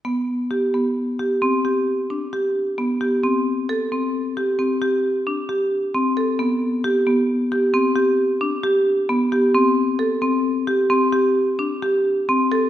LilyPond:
\new Staff \with { instrumentName = "Marimba" } { \time 7/4 \key c \major \tempo 4 = 133 b4 g'8 b4 g'8 c'8 g'4 d'8 g'4 b8 g'8 | c'4 a'8 c'4 g'8 c'8 g'4 d'8 g'4 c'8 a'8 | b4 g'8 b4 g'8 c'8 g'4 d'8 g'4 b8 g'8 | c'4 a'8 c'4 g'8 c'8 g'4 d'8 g'4 c'8 a'8 | }